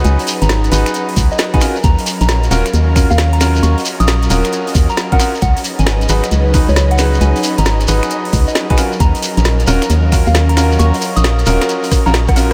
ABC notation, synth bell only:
X:1
M:4/4
L:1/16
Q:"Swing 16ths" 1/4=134
K:Ebm
V:1 name="Synth bell"
a z2 b2 z6 e z a z2 | b z2 b2 z6 f z b z2 | d' z2 e'2 z6 b z g z2 | g z2 a2 z6 d z g z2 |
a z2 b2 z6 e z a z2 | b z2 b2 z6 f z b z2 | d' z2 e'2 z6 b z g z2 |]